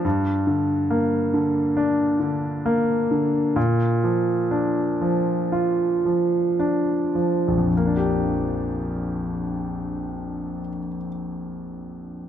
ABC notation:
X:1
M:4/4
L:1/8
Q:1/4=58
K:Bb
V:1 name="Grand piano" clef=bass
G,, D, B, D, D D, B, D, | B,, F, D F, F F, D F, | [B,,,F,,F,B,DG]8 |]